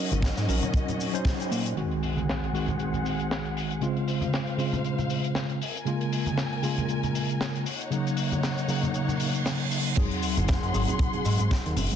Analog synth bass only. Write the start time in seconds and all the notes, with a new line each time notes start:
0.12 G#1
0.38 G#2
0.49 A#1
1.51 A#2
9.97 G#1
10.37 F#1
10.63 F#2
10.74 G#1
11.25 G#2
11.40 G#2
11.66 D#2
11.77 F#1
11.91 G#1